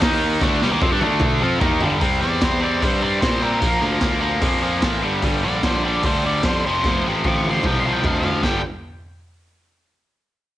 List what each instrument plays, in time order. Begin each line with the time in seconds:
0.01 picked electric bass D#2, overdriven electric guitar D#3 A#3 D#4, kick, snare, open hi-hat
0.41 picked electric bass D2, overdriven electric guitar D3 A3 D4, kick, snare
0.62 picked electric bass C2, overdriven electric guitar C3 G3, snare
0.71 picked electric bass D#2, overdriven electric guitar D#3 A#3
0.81 picked electric bass F2, overdriven electric guitar F3 C4, kick
0.92 picked electric bass G2, overdriven electric guitar G3 D4
1.00 picked electric bass D2, overdriven electric guitar D3 A3 D4, high tom
1.20 kick, mid tom
1.41 picked electric bass F2, overdriven electric guitar F3 C4 F4
1.60 picked electric bass D#2, overdriven electric guitar D#3 A#3 D#4, kick, floor tom
1.81 picked electric bass G1, overdriven electric guitar G2 D3 G3, floor tom
2.00 picked electric bass C2, overdriven electric guitar C3 G3 C4, kick, open hi-hat
2.20 picked electric bass E2, overdriven electric guitar C3 G3 C4
2.24 lead electric guitar D5
2.40 picked electric bass E2, overdriven electric guitar C3 G3 C4, kick, snare, open hi-hat
2.45 lead electric guitar C5
2.60 overdriven electric guitar C3 G3 C4, lead electric guitar D5
2.82 picked electric bass G2, overdriven electric guitar C3 G3 C4, lead electric guitar C5, kick, open hi-hat
3.01 overdriven electric guitar C3 G3 C4, lead electric guitar D5
3.21 picked electric bass A#2, overdriven electric guitar C3 G3 C4, lead electric guitar C5, kick, snare, open hi-hat
3.41 overdriven electric guitar C3 G3 C4, lead electric guitar A#4
3.60 picked electric bass A#1, overdriven electric guitar A#2 F3 A#3, kick, open hi-hat
3.81 picked electric bass D2, overdriven electric guitar A#2 F3 A#3
4.00 picked electric bass D2, overdriven electric guitar A#2 F3 A#3, kick, snare, open hi-hat
4.21 overdriven electric guitar A#2 F3 A#3
4.41 picked electric bass F2, overdriven electric guitar A#2 F3 A#3, kick, open hi-hat
4.62 overdriven electric guitar A#2 F3 A#3
4.82 picked electric bass A1, overdriven electric guitar A#2 F3 A#3, kick, snare, open hi-hat
5.02 picked electric bass G1, overdriven electric guitar G2 D3 G3
5.22 picked electric bass G1, overdriven electric guitar G2 D3 G3, kick, open hi-hat
5.44 picked electric bass A#1, overdriven electric guitar G2 D3 G3, lead electric guitar D5
5.63 picked electric bass A#1, overdriven electric guitar G2 D3 G3, lead electric guitar C5, kick, snare, open hi-hat
5.85 overdriven electric guitar G2 D3 G3, lead electric guitar D5
6.03 picked electric bass D2, overdriven electric guitar G2 D3 G3, lead electric guitar C5, kick, open hi-hat
6.24 overdriven electric guitar G2 D3 G3, lead electric guitar D5
6.43 picked electric bass F2, overdriven electric guitar G2 D3, lead electric guitar C5, kick, snare, open hi-hat
6.47 overdriven electric guitar G3
6.66 picked electric bass F1, overdriven electric guitar F2 C3 F3, lead electric guitar C5
6.84 picked electric bass F1, overdriven electric guitar F2 C3, kick, snare
6.89 overdriven electric guitar F3
7.06 picked electric bass A1, overdriven electric guitar F2 C3 F3
7.24 picked electric bass A1, overdriven electric guitar F2 C3 F3, lead electric guitar D6, kick, high tom
7.37 lead electric guitar C#6
7.44 overdriven electric guitar F2 C3, high tom
7.49 overdriven electric guitar F3, lead electric guitar C6
7.63 picked electric bass C2, overdriven electric guitar F2 C3, lead electric guitar G5, kick, mid tom
7.67 overdriven electric guitar F3
7.80 lead electric guitar C6
7.85 overdriven electric guitar F2 C3 F3
7.93 lead electric guitar G5
8.03 picked electric bass D2, overdriven electric guitar F2 C3 F3, lead electric guitar F5, kick, floor tom
8.19 lead electric guitar F5, floor tom
8.24 overdriven electric guitar F2 C3 F3
8.43 picked electric bass G1, overdriven electric guitar G2 D3 G3, lead electric guitar G5, kick, snare